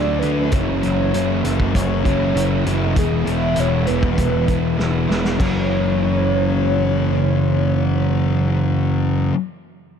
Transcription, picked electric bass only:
0.00 0.22 D2 medium
0.23 0.51 D2 medium
0.53 0.81 F#1 medium
0.85 1.13 F#1 medium
1.14 1.42 F#1 medium
1.45 1.73 F#1 medium
1.75 2.03 F#1 medium
2.06 2.34 F#1 medium
2.35 2.63 F#1 medium
2.66 2.94 F#1 medium
2.97 3.25 E1 medium
3.26 3.55 E1 medium
3.58 3.86 E1 medium
3.89 4.17 E1 medium
4.19 4.47 E1 medium
4.49 4.77 E1 medium
4.80 5.08 E1 medium
5.08 5.37 E1 medium
5.40 9.29 F#1 medium

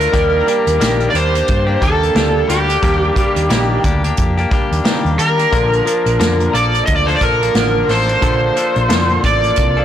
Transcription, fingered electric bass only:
0.13 0.40 D#2 loud
0.67 0.78 D#2 medium
0.80 1.07 A#1 medium
1.14 1.41 D#2 medium
1.49 1.75 G2 medium
1.82 2.09 D#2 medium
2.15 2.42 D2 medium
2.49 2.76 D2 medium
2.83 3.10 D#2 medium
3.36 3.47 D#2 medium
3.50 3.77 A#1 medium
3.84 4.11 D2 medium
4.18 4.45 F2 medium
4.51 muted fingered electric bass stroke soft
4.71 4.82 D#2 medium
5.05 5.16 D#2 medium
5.18 5.45 D#3 medium
5.53 5.80 A#1 medium
6.06 6.17 A#1 medium
6.20 6.47 F2 medium
6.54 6.81 A#1 medium
6.88 7.15 D2 medium
7.21 7.48 A#1 medium
7.55 7.82 A1 medium
7.88 8.15 A1 medium
8.22 8.49 A#1 medium
8.76 8.87 A#1 loud
8.90 9.17 F2 medium
9.24 9.51 A1 medium
9.57 9.85 C2 medium

